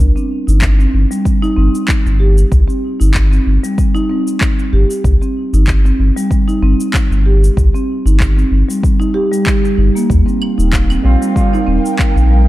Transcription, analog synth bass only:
0.00 0.11 C2 loud
0.48 0.86 G1 medium
0.94 1.05 G1 medium
1.57 1.69 G1 medium
2.06 2.44 G1 medium
2.52 2.63 C2 medium
3.01 3.39 G1 medium
3.46 3.58 G1 medium
4.73 4.84 G1 loud
5.04 5.16 C2 loud
5.53 5.92 G1 medium
5.99 6.11 G1 medium
6.62 6.74 G1 medium
7.11 7.49 G1 loud
7.57 7.68 C2 loud
8.05 8.44 G1 medium
8.51 8.63 G1 medium
9.78 9.89 G1 medium
10.10 10.21 D#2 medium
10.58 10.97 D#1 medium
11.04 11.16 A#1 medium
11.67 11.79 D#1 medium
12.16 12.48 A#1 medium

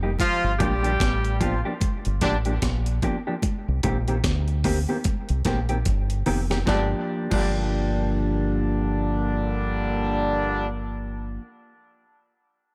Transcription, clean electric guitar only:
0.03 0.10 G3 medium
0.03 0.10 A#3 medium
0.03 0.10 D#4 medium
0.03 0.10 G4 medium
0.60 0.73 F3 medium
0.60 0.73 A#3 medium
0.60 0.73 D4 medium
0.60 0.73 G4 medium
0.83 0.91 F3 soft
0.83 0.91 A#3 medium
0.83 0.90 D4 medium
0.83 0.90 G4 medium
1.41 1.53 F3 medium
1.41 1.54 A#3 medium
1.41 1.54 D4 loud
1.41 1.54 G4 medium
1.65 1.73 F3 medium
1.65 1.72 A#3 medium
1.65 1.72 D4 medium
1.65 1.72 G4 medium
2.22 2.35 F3 medium
2.22 2.35 A#3 medium
2.22 2.35 D4 medium
2.22 2.35 G4 medium
2.46 2.53 F3 soft
2.46 2.53 A#3 medium
2.46 2.53 D4 medium
2.46 2.52 G4 medium
3.03 3.15 F3 medium
3.03 3.16 A#3 medium
3.03 3.16 D4 medium
3.03 3.16 G4 medium
3.27 3.34 F3 medium
3.27 3.34 A#3 medium
3.27 3.34 D4 medium
3.27 3.34 G4 medium
3.83 3.96 D#3 medium
3.83 3.97 A#3 medium
3.83 3.97 C4 medium
3.83 3.97 G4 loud
4.08 4.15 D#3 medium
4.08 4.15 A#3 soft
4.08 4.15 C4 medium
4.08 4.15 G4 medium
4.64 4.77 D#3 medium
4.64 4.78 A#3 medium
4.64 4.78 C4 medium
4.64 4.78 G4 medium
4.89 4.96 D#3 medium
4.89 4.96 A#3 medium
4.89 4.96 C4 medium
4.89 4.96 G4 medium
5.46 5.58 D#3 medium
5.46 5.59 A#3 medium
5.46 5.59 C4 medium
5.46 5.59 G4 medium
5.69 5.77 D#3 medium
5.69 5.77 A#3 soft
5.69 5.76 C4 medium
5.69 5.76 G4 medium
6.26 6.39 D#3 medium
6.26 6.39 A#3 medium
6.26 6.40 C4 medium
6.26 6.40 G4 medium
6.51 6.58 D#3 medium
6.51 6.58 A#3 medium
6.51 6.57 C4 medium
6.51 6.57 G4 medium
6.66 7.30 F3 medium
6.66 7.32 A#3 medium
6.66 7.33 D4 medium
6.71 7.33 G4 loud
7.30 11.40 F3 medium
7.30 11.41 A#3 medium
7.30 11.42 D4 medium
7.35 11.43 G4 medium

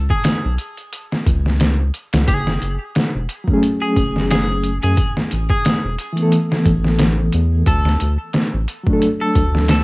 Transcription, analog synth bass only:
0.45 0.58 B1 medium
1.27 1.91 C#2 medium
2.14 2.26 C#2 medium
2.29 2.58 F#1 loud
2.62 2.78 F#1 medium
3.15 3.28 E1 medium
3.97 4.79 F#1 medium
4.84 4.96 F#2 medium
5.33 5.48 A1 medium
5.84 5.97 E1 medium
6.66 7.31 A1 medium
7.34 7.64 E2 medium
7.67 7.97 D2 loud
8.02 8.18 D2 medium
8.54 8.67 A1 medium
9.36 9.84 D2 medium

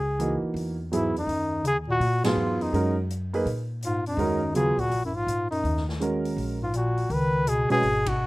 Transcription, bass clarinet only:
0.92 1.14 G#2 medium
1.16 1.61 F#2 medium
1.64 1.75 C#3 medium
1.88 2.22 A#2 medium
2.24 2.61 G#2 medium
2.59 2.96 F#2 medium
3.84 4.05 G#2 medium
4.07 4.52 F#2 medium
4.54 4.79 C#3 medium
4.78 5.04 A#2 medium
5.04 5.16 F#2 medium
5.14 5.50 G#2 medium
5.50 5.85 F#2 medium
6.61 6.73 G#2 medium
6.74 7.12 A#2 medium
7.11 7.48 D#3 medium
7.47 7.70 B2 medium
7.70 8.06 B2 medium
8.06 8.27 B2 medium

